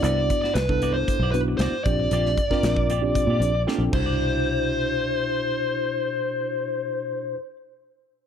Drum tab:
CC |----------------|--------------x-|----------------|----------------|
HH |x-x-x-x-x-x-x-x-|x-x-x-x-x-x-----|----------------|----------------|
SD |---oo-------o---|-o-oo-------o---|----------------|----------------|
BD |--o--o--o-----o-|--oo-o--o-----o-|----------------|----------------|